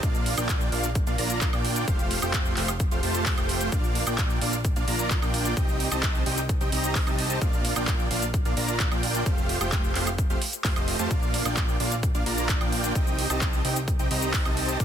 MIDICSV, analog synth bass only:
0, 0, Header, 1, 2, 480
1, 0, Start_track
1, 0, Key_signature, -2, "major"
1, 0, Tempo, 461538
1, 32, Time_signature, 4, 2, 24, 8
1, 15442, End_track
2, 0, Start_track
2, 0, Title_t, "Analog synth bass"
2, 0, Program_c, 0, 38
2, 32, Note_on_c, 0, 34, 96
2, 368, Note_off_c, 0, 34, 0
2, 392, Note_on_c, 0, 34, 101
2, 728, Note_off_c, 0, 34, 0
2, 752, Note_on_c, 0, 34, 102
2, 1088, Note_off_c, 0, 34, 0
2, 1112, Note_on_c, 0, 34, 103
2, 1208, Note_off_c, 0, 34, 0
2, 1232, Note_on_c, 0, 34, 97
2, 1568, Note_off_c, 0, 34, 0
2, 1592, Note_on_c, 0, 34, 99
2, 1928, Note_off_c, 0, 34, 0
2, 1952, Note_on_c, 0, 29, 96
2, 2288, Note_off_c, 0, 29, 0
2, 2312, Note_on_c, 0, 29, 97
2, 2648, Note_off_c, 0, 29, 0
2, 2672, Note_on_c, 0, 29, 99
2, 3008, Note_off_c, 0, 29, 0
2, 3032, Note_on_c, 0, 29, 100
2, 3128, Note_off_c, 0, 29, 0
2, 3151, Note_on_c, 0, 29, 97
2, 3488, Note_off_c, 0, 29, 0
2, 3512, Note_on_c, 0, 29, 98
2, 3848, Note_off_c, 0, 29, 0
2, 3872, Note_on_c, 0, 34, 99
2, 4208, Note_off_c, 0, 34, 0
2, 4232, Note_on_c, 0, 34, 98
2, 4568, Note_off_c, 0, 34, 0
2, 4592, Note_on_c, 0, 34, 96
2, 4928, Note_off_c, 0, 34, 0
2, 4953, Note_on_c, 0, 34, 99
2, 5049, Note_off_c, 0, 34, 0
2, 5072, Note_on_c, 0, 34, 93
2, 5408, Note_off_c, 0, 34, 0
2, 5433, Note_on_c, 0, 34, 99
2, 5769, Note_off_c, 0, 34, 0
2, 5792, Note_on_c, 0, 36, 98
2, 6128, Note_off_c, 0, 36, 0
2, 6152, Note_on_c, 0, 36, 97
2, 6488, Note_off_c, 0, 36, 0
2, 6512, Note_on_c, 0, 36, 100
2, 6849, Note_off_c, 0, 36, 0
2, 6873, Note_on_c, 0, 36, 95
2, 6969, Note_off_c, 0, 36, 0
2, 6993, Note_on_c, 0, 36, 92
2, 7329, Note_off_c, 0, 36, 0
2, 7353, Note_on_c, 0, 36, 101
2, 7689, Note_off_c, 0, 36, 0
2, 7712, Note_on_c, 0, 34, 98
2, 8048, Note_off_c, 0, 34, 0
2, 8072, Note_on_c, 0, 34, 99
2, 8408, Note_off_c, 0, 34, 0
2, 8432, Note_on_c, 0, 34, 101
2, 8768, Note_off_c, 0, 34, 0
2, 8792, Note_on_c, 0, 34, 98
2, 8888, Note_off_c, 0, 34, 0
2, 8912, Note_on_c, 0, 34, 98
2, 9248, Note_off_c, 0, 34, 0
2, 9272, Note_on_c, 0, 34, 97
2, 9608, Note_off_c, 0, 34, 0
2, 9632, Note_on_c, 0, 29, 94
2, 9968, Note_off_c, 0, 29, 0
2, 9992, Note_on_c, 0, 29, 96
2, 10328, Note_off_c, 0, 29, 0
2, 10353, Note_on_c, 0, 29, 103
2, 10689, Note_off_c, 0, 29, 0
2, 10713, Note_on_c, 0, 29, 100
2, 10785, Note_off_c, 0, 29, 0
2, 11072, Note_on_c, 0, 29, 97
2, 11168, Note_off_c, 0, 29, 0
2, 11193, Note_on_c, 0, 29, 100
2, 11408, Note_off_c, 0, 29, 0
2, 11433, Note_on_c, 0, 41, 99
2, 11529, Note_off_c, 0, 41, 0
2, 11552, Note_on_c, 0, 34, 97
2, 11888, Note_off_c, 0, 34, 0
2, 11912, Note_on_c, 0, 34, 93
2, 12248, Note_off_c, 0, 34, 0
2, 12273, Note_on_c, 0, 34, 100
2, 12609, Note_off_c, 0, 34, 0
2, 12632, Note_on_c, 0, 34, 101
2, 12728, Note_off_c, 0, 34, 0
2, 12752, Note_on_c, 0, 34, 93
2, 13088, Note_off_c, 0, 34, 0
2, 13112, Note_on_c, 0, 34, 99
2, 13448, Note_off_c, 0, 34, 0
2, 13472, Note_on_c, 0, 36, 97
2, 13808, Note_off_c, 0, 36, 0
2, 13833, Note_on_c, 0, 36, 102
2, 14169, Note_off_c, 0, 36, 0
2, 14193, Note_on_c, 0, 36, 99
2, 14529, Note_off_c, 0, 36, 0
2, 14553, Note_on_c, 0, 36, 99
2, 14649, Note_off_c, 0, 36, 0
2, 14672, Note_on_c, 0, 36, 99
2, 15008, Note_off_c, 0, 36, 0
2, 15032, Note_on_c, 0, 36, 105
2, 15368, Note_off_c, 0, 36, 0
2, 15392, Note_on_c, 0, 34, 99
2, 15442, Note_off_c, 0, 34, 0
2, 15442, End_track
0, 0, End_of_file